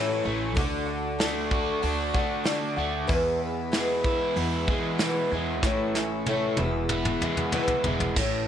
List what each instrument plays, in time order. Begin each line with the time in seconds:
Already playing: upright bass A2, twelve-string acoustic guitar A2 E3 A3 C#4 E4, overdriven electric guitar A3 C#4 E4, tonewheel organ A4 C#5 E5 C#6
0.24 upright bass A1, twelve-string acoustic guitar A3 C#4 E4
0.55 upright bass D2, twelve-string acoustic guitar D3 A3 D4 F#4, tonewheel organ F#5, kick, open hi-hat
0.59 tonewheel organ D5 D6
0.85 twelve-string acoustic guitar A3 D4 F#4
1.19 twelve-string acoustic guitar D3 A3 D4 F#4, snare, open hi-hat
1.51 overdriven electric guitar F#4, kick
1.82 upright bass D2, twelve-string acoustic guitar D3 A3 D4 F#4, open hi-hat
2.14 upright bass D3, twelve-string acoustic guitar A3 D4 F#4, kick
2.44 twelve-string acoustic guitar D3 A3 D4 F#4, snare, open hi-hat
2.76 upright bass D2, twelve-string acoustic guitar A3 D4 F#4
3.07 twelve-string acoustic guitar E2 B2 E3 G#3 B3 E4, upright bass E2, tonewheel organ B4 E5 B5, kick, open hi-hat
3.12 tonewheel organ G#4
3.39 twelve-string acoustic guitar E3 G#3 B3 E4
3.72 twelve-string acoustic guitar E2 B2 E3 G#3 B3 E4, snare, open hi-hat
4.04 overdriven electric guitar E4, kick
4.35 upright bass E2, twelve-string acoustic guitar E3 G#3 B3 E4, open hi-hat
4.67 upright bass E3, twelve-string acoustic guitar E3 G#3 B3 E4, kick
4.98 twelve-string acoustic guitar E2 B2 E3 G#3 B3 E4, snare, open hi-hat
5.32 upright bass E2, twelve-string acoustic guitar E3 G#3 B3 E4
5.63 upright bass A1, twelve-string acoustic guitar A2 E3 A3 C#4 E4, tonewheel organ A4 C#5 C#6, kick, snare
5.95 twelve-string acoustic guitar A3 C#4 E4, snare
6.26 twelve-string acoustic guitar A2 E3 A3 C#4 E4, high tom
6.57 upright bass E1, twelve-string acoustic guitar E2 B2 E3 G#3 B3 E4, tonewheel organ B4 B5, high tom
6.61 tonewheel organ G#4
6.89 overdriven electric guitar B3, mid tom
7.05 mid tom
7.21 upright bass E2, twelve-string acoustic guitar E3 G#3 B3 E4, mid tom
7.37 mid tom
7.52 twelve-string acoustic guitar E2 B2 E3 G#3 B3 E4, mid tom
7.68 floor tom
7.84 upright bass E1, twelve-string acoustic guitar E3 G#3 B3 E4, floor tom
8.00 floor tom
8.16 upright bass A1, twelve-string acoustic guitar A2 E3 A3 C#4 E4, kick, crash